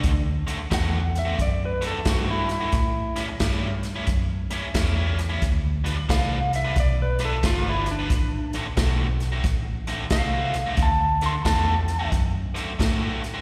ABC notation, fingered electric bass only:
X:1
M:4/4
L:1/8
Q:"Swing" 1/4=89
K:Dmix
V:1 name="Fingered electric bass" clef=bass
D,, z E,,2 F,,2 G,,2 | A,,2 G,,2 F,,2 E,,2 | D,,2 C,,2 B,,,2 G,,,2 | A,,,2 B,,,2 A,,,2 C,, z |
D,,2 E,,2 F,,2 A,,2 |]